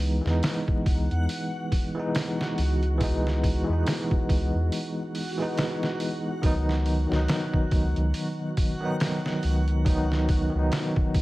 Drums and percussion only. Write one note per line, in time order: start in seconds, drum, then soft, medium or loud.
0.00 open hi-hat medium
0.26 snare soft
0.43 snare loud
0.43 open hi-hat medium
0.68 kick medium
0.86 kick medium
0.86 open hi-hat medium
1.11 closed hi-hat soft
1.29 open hi-hat medium
1.72 kick medium
1.72 open hi-hat medium
2.15 snare loud
2.15 open hi-hat medium
2.41 snare medium
2.58 open hi-hat medium
2.83 closed hi-hat soft
3.01 kick loud
3.01 open hi-hat medium
3.27 snare soft
3.44 kick medium
3.44 open hi-hat medium
3.87 snare loud
3.87 open hi-hat medium
4.11 kick loud
4.29 kick medium
4.29 open hi-hat medium
4.72 open hi-hat medium
5.15 open hi-hat medium
5.57 snare loud
5.57 open hi-hat medium
5.83 snare soft
6.00 open hi-hat medium
6.43 kick loud
6.43 open hi-hat medium
6.69 snare soft
6.86 open hi-hat medium
7.12 snare soft
7.28 snare loud
7.28 open hi-hat medium
7.54 kick loud
7.71 kick medium
7.71 open hi-hat medium
7.96 closed hi-hat soft
8.14 open hi-hat medium
8.57 kick loud
8.57 open hi-hat medium
9.00 snare loud
9.00 open hi-hat medium
9.26 snare medium
9.43 open hi-hat medium
9.68 closed hi-hat soft
9.86 kick loud
9.86 open hi-hat medium
10.12 snare soft
10.29 kick medium
10.29 open hi-hat medium
10.72 snare loud
10.72 open hi-hat medium
10.96 kick loud
11.14 kick medium
11.14 open hi-hat medium